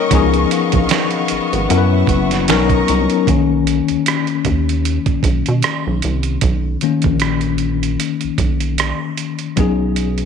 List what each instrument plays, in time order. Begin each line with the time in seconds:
Already playing: tine electric piano G3 A#3 C#4 D#4 A#4 C#5 D#5, string section D#5 C#6
0.11 analog synth bass C#2, tine electric piano F3 B3 C#4 D#4, string section B3 F5, kick, closed hi-hat
0.15 tine electric piano G#4
0.34 closed hi-hat
0.51 closed hi-hat
0.72 analog synth bass A#1, kick, closed hi-hat
0.89 snare, closed hi-hat
1.11 closed hi-hat
1.28 analog synth bass G#1, closed hi-hat
1.53 analog synth bass G#1, closed hi-hat
1.69 analog synth bass F#2, tine electric piano F#3 B3 C#4 E4 A#4, string section E5 F#5, closed hi-hat
1.78 tine electric piano B4
2.07 analog synth bass F#1, kick, closed hi-hat
2.31 snare, closed hi-hat
2.48 analog synth bass B1, tine electric piano F#3 B3 C#4 D#4 A#4, string section D#5 A#5 C#6, snare, closed hi-hat
2.70 kick, closed hi-hat
2.88 analog synth bass C2, closed hi-hat
3.10 closed hi-hat
3.27 analog synth bass B1, tine electric piano D#3 A#3 C#4, kick, closed hi-hat
3.67 closed hi-hat
3.88 analog synth bass D#2, closed hi-hat
4.06 cross-stick, closed hi-hat
4.27 closed hi-hat
4.45 analog synth bass D#2, kick, closed hi-hat
4.69 closed hi-hat
4.85 closed hi-hat
5.06 kick, closed hi-hat
5.23 analog synth bass B1, kick, closed hi-hat
5.46 analog synth bass B2, closed hi-hat
5.62 cross-stick, closed hi-hat
5.87 analog synth bass B1
6.02 analog synth bass C2, closed hi-hat
6.23 closed hi-hat
6.41 analog synth bass B1, kick, closed hi-hat
6.81 tine electric piano D#3 A#3 C#4, closed hi-hat
7.02 analog synth bass A#1, kick, closed hi-hat
7.20 cross-stick, closed hi-hat
7.41 closed hi-hat
7.58 closed hi-hat
7.83 closed hi-hat
8.00 closed hi-hat
8.21 analog synth bass B1, closed hi-hat
8.38 analog synth bass B1, kick, closed hi-hat
8.60 closed hi-hat
8.78 cross-stick, closed hi-hat
9.17 closed hi-hat
9.39 closed hi-hat
9.56 analog synth bass B1, tine electric piano F#3 B3 C#4 D#4 G#4, kick, closed hi-hat
9.96 closed hi-hat
10.18 closed hi-hat